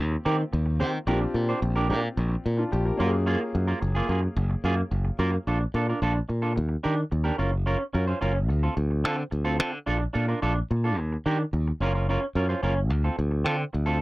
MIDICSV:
0, 0, Header, 1, 5, 480
1, 0, Start_track
1, 0, Key_signature, -2, "major"
1, 0, Tempo, 550459
1, 927, Time_signature, 4, 2, 24, 8
1, 12222, End_track
2, 0, Start_track
2, 0, Title_t, "Clean electric guitar"
2, 0, Program_c, 0, 27
2, 221, Note_on_c, 0, 60, 90
2, 221, Note_on_c, 0, 67, 91
2, 225, Note_on_c, 0, 70, 110
2, 324, Note_off_c, 0, 70, 0
2, 331, Note_off_c, 0, 67, 0
2, 354, Note_off_c, 0, 60, 0
2, 695, Note_on_c, 0, 60, 72
2, 698, Note_on_c, 0, 67, 86
2, 705, Note_on_c, 0, 72, 89
2, 811, Note_off_c, 0, 72, 0
2, 813, Note_off_c, 0, 67, 0
2, 831, Note_off_c, 0, 60, 0
2, 932, Note_on_c, 0, 62, 74
2, 939, Note_on_c, 0, 67, 87
2, 944, Note_on_c, 0, 70, 94
2, 1051, Note_off_c, 0, 70, 0
2, 1062, Note_off_c, 0, 67, 0
2, 1069, Note_off_c, 0, 62, 0
2, 1297, Note_on_c, 0, 72, 69
2, 1301, Note_on_c, 0, 67, 47
2, 1307, Note_on_c, 0, 62, 53
2, 1401, Note_off_c, 0, 62, 0
2, 1401, Note_off_c, 0, 72, 0
2, 1403, Note_off_c, 0, 67, 0
2, 1531, Note_on_c, 0, 70, 77
2, 1537, Note_on_c, 0, 67, 77
2, 1541, Note_on_c, 0, 62, 66
2, 1641, Note_off_c, 0, 62, 0
2, 1645, Note_off_c, 0, 67, 0
2, 1651, Note_on_c, 0, 62, 59
2, 1655, Note_off_c, 0, 70, 0
2, 1656, Note_on_c, 0, 67, 64
2, 1665, Note_on_c, 0, 70, 76
2, 1756, Note_off_c, 0, 70, 0
2, 1758, Note_off_c, 0, 62, 0
2, 1760, Note_off_c, 0, 67, 0
2, 2609, Note_on_c, 0, 58, 83
2, 2617, Note_on_c, 0, 65, 98
2, 2624, Note_on_c, 0, 70, 94
2, 2730, Note_off_c, 0, 70, 0
2, 2732, Note_off_c, 0, 65, 0
2, 2747, Note_off_c, 0, 58, 0
2, 2846, Note_on_c, 0, 58, 81
2, 2851, Note_on_c, 0, 65, 95
2, 2856, Note_on_c, 0, 68, 88
2, 2965, Note_off_c, 0, 68, 0
2, 2977, Note_off_c, 0, 65, 0
2, 2985, Note_off_c, 0, 58, 0
2, 3204, Note_on_c, 0, 70, 66
2, 3208, Note_on_c, 0, 65, 71
2, 3214, Note_on_c, 0, 58, 58
2, 3314, Note_off_c, 0, 70, 0
2, 3316, Note_off_c, 0, 65, 0
2, 3317, Note_off_c, 0, 58, 0
2, 3444, Note_on_c, 0, 68, 80
2, 3456, Note_on_c, 0, 65, 77
2, 3457, Note_on_c, 0, 58, 62
2, 3557, Note_off_c, 0, 58, 0
2, 3566, Note_off_c, 0, 65, 0
2, 3568, Note_on_c, 0, 58, 60
2, 3573, Note_off_c, 0, 68, 0
2, 3577, Note_on_c, 0, 65, 64
2, 3584, Note_on_c, 0, 68, 70
2, 3676, Note_off_c, 0, 58, 0
2, 3678, Note_off_c, 0, 68, 0
2, 3681, Note_off_c, 0, 65, 0
2, 4051, Note_on_c, 0, 58, 89
2, 4055, Note_on_c, 0, 65, 97
2, 4057, Note_on_c, 0, 68, 96
2, 4152, Note_off_c, 0, 68, 0
2, 4160, Note_off_c, 0, 65, 0
2, 4188, Note_off_c, 0, 58, 0
2, 4526, Note_on_c, 0, 58, 88
2, 4529, Note_on_c, 0, 65, 92
2, 4532, Note_on_c, 0, 70, 90
2, 4646, Note_off_c, 0, 65, 0
2, 4647, Note_off_c, 0, 70, 0
2, 4665, Note_off_c, 0, 58, 0
2, 4772, Note_on_c, 0, 62, 70
2, 4779, Note_on_c, 0, 65, 68
2, 4779, Note_on_c, 0, 69, 76
2, 4879, Note_off_c, 0, 69, 0
2, 4885, Note_off_c, 0, 65, 0
2, 4908, Note_off_c, 0, 62, 0
2, 5011, Note_on_c, 0, 62, 64
2, 5015, Note_on_c, 0, 65, 59
2, 5021, Note_on_c, 0, 69, 69
2, 5118, Note_off_c, 0, 62, 0
2, 5119, Note_off_c, 0, 65, 0
2, 5122, Note_off_c, 0, 69, 0
2, 5138, Note_on_c, 0, 70, 52
2, 5141, Note_on_c, 0, 65, 50
2, 5144, Note_on_c, 0, 62, 52
2, 5241, Note_off_c, 0, 62, 0
2, 5241, Note_off_c, 0, 70, 0
2, 5242, Note_off_c, 0, 65, 0
2, 5252, Note_on_c, 0, 62, 83
2, 5254, Note_on_c, 0, 65, 82
2, 5260, Note_on_c, 0, 69, 82
2, 5358, Note_off_c, 0, 69, 0
2, 5366, Note_off_c, 0, 65, 0
2, 5388, Note_off_c, 0, 62, 0
2, 5599, Note_on_c, 0, 69, 57
2, 5604, Note_on_c, 0, 65, 58
2, 5606, Note_on_c, 0, 62, 47
2, 5706, Note_off_c, 0, 62, 0
2, 5711, Note_off_c, 0, 69, 0
2, 5714, Note_off_c, 0, 65, 0
2, 5960, Note_on_c, 0, 62, 77
2, 5963, Note_on_c, 0, 67, 84
2, 5964, Note_on_c, 0, 70, 89
2, 6065, Note_off_c, 0, 70, 0
2, 6075, Note_off_c, 0, 67, 0
2, 6102, Note_off_c, 0, 62, 0
2, 6313, Note_on_c, 0, 70, 81
2, 6321, Note_on_c, 0, 67, 76
2, 6325, Note_on_c, 0, 62, 65
2, 6435, Note_off_c, 0, 62, 0
2, 6438, Note_off_c, 0, 70, 0
2, 6438, Note_on_c, 0, 61, 60
2, 6441, Note_off_c, 0, 67, 0
2, 6444, Note_on_c, 0, 65, 66
2, 6448, Note_on_c, 0, 70, 63
2, 6551, Note_off_c, 0, 61, 0
2, 6554, Note_off_c, 0, 65, 0
2, 6556, Note_off_c, 0, 70, 0
2, 6680, Note_on_c, 0, 61, 78
2, 6686, Note_on_c, 0, 65, 71
2, 6688, Note_on_c, 0, 70, 81
2, 6791, Note_off_c, 0, 70, 0
2, 6799, Note_off_c, 0, 65, 0
2, 6823, Note_off_c, 0, 61, 0
2, 6917, Note_on_c, 0, 61, 56
2, 6924, Note_on_c, 0, 65, 61
2, 6928, Note_on_c, 0, 70, 66
2, 7031, Note_off_c, 0, 61, 0
2, 7034, Note_off_c, 0, 65, 0
2, 7037, Note_off_c, 0, 70, 0
2, 7041, Note_on_c, 0, 72, 58
2, 7047, Note_on_c, 0, 65, 44
2, 7053, Note_on_c, 0, 61, 51
2, 7148, Note_off_c, 0, 61, 0
2, 7153, Note_off_c, 0, 65, 0
2, 7153, Note_off_c, 0, 72, 0
2, 7158, Note_on_c, 0, 61, 75
2, 7163, Note_on_c, 0, 65, 81
2, 7169, Note_on_c, 0, 70, 88
2, 7271, Note_off_c, 0, 70, 0
2, 7279, Note_off_c, 0, 65, 0
2, 7302, Note_off_c, 0, 61, 0
2, 7525, Note_on_c, 0, 69, 59
2, 7527, Note_on_c, 0, 65, 55
2, 7533, Note_on_c, 0, 60, 45
2, 7634, Note_off_c, 0, 60, 0
2, 7635, Note_off_c, 0, 69, 0
2, 7636, Note_off_c, 0, 65, 0
2, 7884, Note_on_c, 0, 60, 76
2, 7892, Note_on_c, 0, 65, 85
2, 7896, Note_on_c, 0, 69, 97
2, 7997, Note_off_c, 0, 69, 0
2, 8003, Note_off_c, 0, 65, 0
2, 8025, Note_off_c, 0, 60, 0
2, 8237, Note_on_c, 0, 69, 80
2, 8240, Note_on_c, 0, 65, 83
2, 8246, Note_on_c, 0, 60, 77
2, 8352, Note_off_c, 0, 60, 0
2, 8358, Note_off_c, 0, 65, 0
2, 8361, Note_off_c, 0, 69, 0
2, 8362, Note_on_c, 0, 60, 59
2, 8368, Note_on_c, 0, 65, 60
2, 8372, Note_on_c, 0, 69, 73
2, 8474, Note_off_c, 0, 60, 0
2, 8476, Note_off_c, 0, 69, 0
2, 8477, Note_off_c, 0, 65, 0
2, 8601, Note_on_c, 0, 62, 84
2, 8604, Note_on_c, 0, 65, 84
2, 8614, Note_on_c, 0, 69, 90
2, 8708, Note_off_c, 0, 69, 0
2, 8718, Note_off_c, 0, 65, 0
2, 8744, Note_off_c, 0, 62, 0
2, 8836, Note_on_c, 0, 62, 69
2, 8841, Note_on_c, 0, 65, 71
2, 8846, Note_on_c, 0, 69, 69
2, 8951, Note_off_c, 0, 62, 0
2, 8954, Note_off_c, 0, 65, 0
2, 8956, Note_off_c, 0, 69, 0
2, 8967, Note_on_c, 0, 70, 60
2, 8969, Note_on_c, 0, 65, 48
2, 8977, Note_on_c, 0, 62, 42
2, 9076, Note_off_c, 0, 70, 0
2, 9077, Note_off_c, 0, 62, 0
2, 9078, Note_off_c, 0, 65, 0
2, 9088, Note_on_c, 0, 62, 77
2, 9089, Note_on_c, 0, 65, 81
2, 9093, Note_on_c, 0, 69, 99
2, 9196, Note_off_c, 0, 69, 0
2, 9204, Note_off_c, 0, 65, 0
2, 9227, Note_off_c, 0, 62, 0
2, 9453, Note_on_c, 0, 69, 58
2, 9461, Note_on_c, 0, 65, 63
2, 9465, Note_on_c, 0, 62, 47
2, 9560, Note_off_c, 0, 69, 0
2, 9564, Note_off_c, 0, 65, 0
2, 9566, Note_off_c, 0, 62, 0
2, 9816, Note_on_c, 0, 62, 80
2, 9823, Note_on_c, 0, 67, 96
2, 9823, Note_on_c, 0, 70, 87
2, 9932, Note_off_c, 0, 70, 0
2, 9937, Note_off_c, 0, 67, 0
2, 9952, Note_off_c, 0, 62, 0
2, 10299, Note_on_c, 0, 61, 81
2, 10307, Note_on_c, 0, 65, 96
2, 10313, Note_on_c, 0, 70, 103
2, 10408, Note_off_c, 0, 70, 0
2, 10412, Note_off_c, 0, 65, 0
2, 10418, Note_off_c, 0, 61, 0
2, 10418, Note_on_c, 0, 70, 55
2, 10423, Note_on_c, 0, 65, 61
2, 10428, Note_on_c, 0, 61, 49
2, 10523, Note_off_c, 0, 70, 0
2, 10525, Note_off_c, 0, 65, 0
2, 10528, Note_off_c, 0, 61, 0
2, 10543, Note_on_c, 0, 61, 77
2, 10550, Note_on_c, 0, 65, 80
2, 10553, Note_on_c, 0, 70, 81
2, 10647, Note_off_c, 0, 70, 0
2, 10655, Note_off_c, 0, 65, 0
2, 10676, Note_off_c, 0, 61, 0
2, 10776, Note_on_c, 0, 61, 69
2, 10781, Note_on_c, 0, 65, 64
2, 10782, Note_on_c, 0, 70, 64
2, 10882, Note_off_c, 0, 61, 0
2, 10885, Note_off_c, 0, 65, 0
2, 10885, Note_off_c, 0, 70, 0
2, 10891, Note_on_c, 0, 72, 65
2, 10899, Note_on_c, 0, 65, 58
2, 10900, Note_on_c, 0, 61, 52
2, 11000, Note_off_c, 0, 61, 0
2, 11000, Note_off_c, 0, 72, 0
2, 11004, Note_off_c, 0, 65, 0
2, 11010, Note_on_c, 0, 61, 81
2, 11017, Note_on_c, 0, 65, 81
2, 11023, Note_on_c, 0, 70, 84
2, 11120, Note_off_c, 0, 70, 0
2, 11126, Note_off_c, 0, 65, 0
2, 11150, Note_off_c, 0, 61, 0
2, 11372, Note_on_c, 0, 69, 52
2, 11376, Note_on_c, 0, 65, 47
2, 11381, Note_on_c, 0, 60, 43
2, 11481, Note_off_c, 0, 69, 0
2, 11483, Note_off_c, 0, 65, 0
2, 11485, Note_off_c, 0, 60, 0
2, 11723, Note_on_c, 0, 60, 82
2, 11729, Note_on_c, 0, 65, 87
2, 11731, Note_on_c, 0, 69, 85
2, 11831, Note_off_c, 0, 69, 0
2, 11839, Note_off_c, 0, 65, 0
2, 11867, Note_off_c, 0, 60, 0
2, 12085, Note_on_c, 0, 69, 87
2, 12093, Note_on_c, 0, 65, 75
2, 12096, Note_on_c, 0, 60, 63
2, 12206, Note_off_c, 0, 65, 0
2, 12207, Note_off_c, 0, 60, 0
2, 12214, Note_off_c, 0, 69, 0
2, 12222, End_track
3, 0, Start_track
3, 0, Title_t, "Grand piano"
3, 0, Program_c, 1, 0
3, 0, Control_c, 1, 64, 127
3, 0, Note_on_c, 1, 58, 69
3, 0, Note_on_c, 1, 60, 73
3, 0, Note_on_c, 1, 65, 67
3, 0, Note_on_c, 1, 67, 90
3, 651, Note_off_c, 1, 58, 0
3, 654, Note_off_c, 1, 60, 0
3, 659, Note_off_c, 1, 65, 0
3, 664, Note_off_c, 1, 67, 0
3, 931, Note_on_c, 1, 60, 73
3, 936, Note_on_c, 1, 62, 59
3, 940, Control_c, 1, 64, 0
3, 949, Note_on_c, 1, 65, 62
3, 956, Note_on_c, 1, 67, 79
3, 1082, Control_c, 1, 64, 127
3, 2107, Note_off_c, 1, 62, 0
3, 2113, Note_off_c, 1, 65, 0
3, 2117, Note_off_c, 1, 67, 0
3, 2254, Note_on_c, 1, 65, 60
3, 2257, Note_on_c, 1, 62, 57
3, 2364, Note_off_c, 1, 65, 0
3, 2366, Note_off_c, 1, 62, 0
3, 2374, Note_on_c, 1, 67, 83
3, 2476, Note_off_c, 1, 67, 0
3, 2489, Note_on_c, 1, 67, 59
3, 2489, Note_on_c, 1, 70, 71
3, 2575, Note_off_c, 1, 60, 0
3, 2592, Note_on_c, 1, 58, 75
3, 2603, Note_on_c, 1, 61, 68
3, 2612, Note_on_c, 1, 65, 70
3, 2615, Control_c, 1, 64, 0
3, 2621, Note_on_c, 1, 66, 65
3, 2670, Note_off_c, 1, 66, 0
3, 2673, Note_on_c, 1, 68, 83
3, 2715, Note_off_c, 1, 67, 0
3, 2715, Note_off_c, 1, 70, 0
3, 2749, Control_c, 1, 64, 127
3, 4483, Note_off_c, 1, 58, 0
3, 4488, Note_off_c, 1, 61, 0
3, 4493, Note_off_c, 1, 65, 0
3, 4524, Note_off_c, 1, 68, 0
3, 4777, Control_c, 1, 64, 0
3, 12222, End_track
4, 0, Start_track
4, 0, Title_t, "Fingered electric bass"
4, 0, Program_c, 2, 33
4, 0, Note_on_c, 2, 39, 119
4, 134, Note_off_c, 2, 39, 0
4, 225, Note_on_c, 2, 51, 101
4, 375, Note_off_c, 2, 51, 0
4, 465, Note_on_c, 2, 39, 109
4, 699, Note_on_c, 2, 51, 93
4, 712, Note_off_c, 2, 39, 0
4, 851, Note_off_c, 2, 51, 0
4, 933, Note_on_c, 2, 34, 109
4, 1087, Note_off_c, 2, 34, 0
4, 1171, Note_on_c, 2, 46, 99
4, 1326, Note_off_c, 2, 46, 0
4, 1414, Note_on_c, 2, 34, 105
4, 1656, Note_on_c, 2, 46, 98
4, 1669, Note_off_c, 2, 34, 0
4, 1809, Note_off_c, 2, 46, 0
4, 1895, Note_on_c, 2, 34, 109
4, 2048, Note_off_c, 2, 34, 0
4, 2142, Note_on_c, 2, 46, 104
4, 2293, Note_off_c, 2, 46, 0
4, 2380, Note_on_c, 2, 34, 111
4, 2531, Note_off_c, 2, 34, 0
4, 2614, Note_on_c, 2, 42, 100
4, 2923, Note_off_c, 2, 42, 0
4, 3093, Note_on_c, 2, 42, 91
4, 3246, Note_off_c, 2, 42, 0
4, 3333, Note_on_c, 2, 30, 102
4, 3487, Note_off_c, 2, 30, 0
4, 3566, Note_on_c, 2, 42, 90
4, 3721, Note_off_c, 2, 42, 0
4, 3806, Note_on_c, 2, 30, 116
4, 3962, Note_off_c, 2, 30, 0
4, 4044, Note_on_c, 2, 42, 102
4, 4200, Note_off_c, 2, 42, 0
4, 4285, Note_on_c, 2, 30, 102
4, 4441, Note_off_c, 2, 30, 0
4, 4524, Note_on_c, 2, 42, 99
4, 4680, Note_off_c, 2, 42, 0
4, 4771, Note_on_c, 2, 34, 94
4, 4925, Note_off_c, 2, 34, 0
4, 5006, Note_on_c, 2, 46, 98
4, 5162, Note_off_c, 2, 46, 0
4, 5248, Note_on_c, 2, 34, 101
4, 5403, Note_off_c, 2, 34, 0
4, 5488, Note_on_c, 2, 46, 84
4, 5733, Note_on_c, 2, 39, 105
4, 5746, Note_off_c, 2, 46, 0
4, 5886, Note_off_c, 2, 39, 0
4, 5975, Note_on_c, 2, 51, 88
4, 6128, Note_off_c, 2, 51, 0
4, 6208, Note_on_c, 2, 39, 101
4, 6363, Note_off_c, 2, 39, 0
4, 6443, Note_on_c, 2, 30, 83
4, 6756, Note_off_c, 2, 30, 0
4, 6927, Note_on_c, 2, 42, 91
4, 7083, Note_off_c, 2, 42, 0
4, 7170, Note_on_c, 2, 30, 101
4, 7409, Note_off_c, 2, 30, 0
4, 7409, Note_on_c, 2, 38, 94
4, 7564, Note_off_c, 2, 38, 0
4, 7646, Note_on_c, 2, 38, 109
4, 7890, Note_off_c, 2, 38, 0
4, 7890, Note_on_c, 2, 50, 109
4, 8045, Note_off_c, 2, 50, 0
4, 8128, Note_on_c, 2, 38, 114
4, 8370, Note_off_c, 2, 38, 0
4, 8370, Note_on_c, 2, 50, 98
4, 8525, Note_off_c, 2, 50, 0
4, 8609, Note_on_c, 2, 34, 105
4, 8764, Note_off_c, 2, 34, 0
4, 8852, Note_on_c, 2, 46, 103
4, 9007, Note_off_c, 2, 46, 0
4, 9093, Note_on_c, 2, 34, 101
4, 9247, Note_off_c, 2, 34, 0
4, 9336, Note_on_c, 2, 46, 100
4, 9574, Note_off_c, 2, 46, 0
4, 9574, Note_on_c, 2, 39, 110
4, 9728, Note_off_c, 2, 39, 0
4, 9817, Note_on_c, 2, 51, 88
4, 9970, Note_off_c, 2, 51, 0
4, 10054, Note_on_c, 2, 39, 96
4, 10208, Note_off_c, 2, 39, 0
4, 10293, Note_on_c, 2, 30, 89
4, 10604, Note_off_c, 2, 30, 0
4, 10772, Note_on_c, 2, 42, 95
4, 10927, Note_off_c, 2, 42, 0
4, 11015, Note_on_c, 2, 30, 92
4, 11251, Note_off_c, 2, 30, 0
4, 11251, Note_on_c, 2, 38, 86
4, 11407, Note_off_c, 2, 38, 0
4, 11498, Note_on_c, 2, 38, 99
4, 11734, Note_off_c, 2, 38, 0
4, 11734, Note_on_c, 2, 50, 100
4, 11889, Note_off_c, 2, 50, 0
4, 11984, Note_on_c, 2, 38, 103
4, 12222, Note_off_c, 2, 38, 0
4, 12222, End_track
5, 0, Start_track
5, 0, Title_t, "Muted clean electric guitar strokes"
5, 104, Note_on_c, 9, 29, 45
5, 191, Note_off_c, 9, 29, 0
5, 334, Note_on_c, 9, 29, 52
5, 421, Note_off_c, 9, 29, 0
5, 459, Note_on_c, 9, 29, 48
5, 546, Note_off_c, 9, 29, 0
5, 573, Note_on_c, 9, 29, 43
5, 660, Note_off_c, 9, 29, 0
5, 815, Note_on_c, 9, 29, 41
5, 902, Note_off_c, 9, 29, 0
5, 1062, Note_on_c, 9, 29, 51
5, 1149, Note_off_c, 9, 29, 0
5, 1173, Note_on_c, 9, 29, 40
5, 1260, Note_off_c, 9, 29, 0
5, 1412, Note_on_c, 9, 29, 44
5, 1499, Note_off_c, 9, 29, 0
5, 1766, Note_on_c, 9, 29, 49
5, 1853, Note_off_c, 9, 29, 0
5, 1895, Note_on_c, 9, 29, 39
5, 1982, Note_off_c, 9, 29, 0
5, 2001, Note_on_c, 9, 29, 55
5, 2088, Note_off_c, 9, 29, 0
5, 2243, Note_on_c, 9, 29, 48
5, 2331, Note_off_c, 9, 29, 0
5, 2365, Note_on_c, 9, 29, 42
5, 2452, Note_off_c, 9, 29, 0
5, 2490, Note_on_c, 9, 29, 56
5, 2577, Note_off_c, 9, 29, 0
5, 2734, Note_on_c, 9, 29, 49
5, 2821, Note_off_c, 9, 29, 0
5, 2976, Note_on_c, 9, 29, 46
5, 3063, Note_off_c, 9, 29, 0
5, 3095, Note_on_c, 9, 29, 35
5, 3182, Note_off_c, 9, 29, 0
5, 3328, Note_on_c, 9, 29, 45
5, 3415, Note_off_c, 9, 29, 0
5, 3689, Note_on_c, 9, 29, 45
5, 3776, Note_off_c, 9, 29, 0
5, 3810, Note_on_c, 9, 29, 53
5, 3897, Note_off_c, 9, 29, 0
5, 3921, Note_on_c, 9, 29, 56
5, 4008, Note_off_c, 9, 29, 0
5, 4163, Note_on_c, 9, 29, 47
5, 4250, Note_off_c, 9, 29, 0
5, 4283, Note_on_c, 9, 29, 39
5, 4371, Note_off_c, 9, 29, 0
5, 4401, Note_on_c, 9, 29, 56
5, 4488, Note_off_c, 9, 29, 0
5, 4651, Note_on_c, 9, 29, 36
5, 4738, Note_off_c, 9, 29, 0
5, 4889, Note_on_c, 9, 29, 43
5, 4976, Note_off_c, 9, 29, 0
5, 5369, Note_on_c, 9, 29, 44
5, 5456, Note_off_c, 9, 29, 0
5, 5481, Note_on_c, 9, 29, 47
5, 5569, Note_off_c, 9, 29, 0
5, 5831, Note_on_c, 9, 29, 41
5, 5918, Note_off_c, 9, 29, 0
5, 6076, Note_on_c, 9, 29, 44
5, 6163, Note_off_c, 9, 29, 0
5, 6204, Note_on_c, 9, 29, 43
5, 6291, Note_off_c, 9, 29, 0
5, 6802, Note_on_c, 9, 29, 40
5, 6889, Note_off_c, 9, 29, 0
5, 7281, Note_on_c, 9, 29, 50
5, 7368, Note_off_c, 9, 29, 0
5, 7401, Note_on_c, 9, 29, 47
5, 7489, Note_off_c, 9, 29, 0
5, 7644, Note_on_c, 9, 29, 42
5, 7731, Note_off_c, 9, 29, 0
5, 7768, Note_on_c, 9, 29, 43
5, 7855, Note_off_c, 9, 29, 0
5, 8007, Note_on_c, 9, 29, 43
5, 8095, Note_off_c, 9, 29, 0
5, 8120, Note_on_c, 9, 29, 36
5, 8207, Note_off_c, 9, 29, 0
5, 8487, Note_on_c, 9, 29, 42
5, 8574, Note_off_c, 9, 29, 0
5, 8719, Note_on_c, 9, 29, 39
5, 8806, Note_off_c, 9, 29, 0
5, 9206, Note_on_c, 9, 29, 46
5, 9294, Note_off_c, 9, 29, 0
5, 9338, Note_on_c, 9, 29, 40
5, 9426, Note_off_c, 9, 29, 0
5, 9580, Note_on_c, 9, 29, 46
5, 9667, Note_off_c, 9, 29, 0
5, 9701, Note_on_c, 9, 29, 47
5, 9788, Note_off_c, 9, 29, 0
5, 9943, Note_on_c, 9, 29, 52
5, 10030, Note_off_c, 9, 29, 0
5, 10057, Note_on_c, 9, 29, 42
5, 10144, Note_off_c, 9, 29, 0
5, 10181, Note_on_c, 9, 29, 57
5, 10268, Note_off_c, 9, 29, 0
5, 10658, Note_on_c, 9, 29, 43
5, 10745, Note_off_c, 9, 29, 0
5, 11130, Note_on_c, 9, 29, 39
5, 11217, Note_off_c, 9, 29, 0
5, 11247, Note_on_c, 9, 29, 36
5, 11335, Note_off_c, 9, 29, 0
5, 11497, Note_on_c, 9, 29, 42
5, 11584, Note_off_c, 9, 29, 0
5, 11609, Note_on_c, 9, 29, 46
5, 11696, Note_off_c, 9, 29, 0
5, 11841, Note_on_c, 9, 29, 38
5, 11928, Note_off_c, 9, 29, 0
5, 11974, Note_on_c, 9, 29, 45
5, 12061, Note_off_c, 9, 29, 0
5, 12222, End_track
0, 0, End_of_file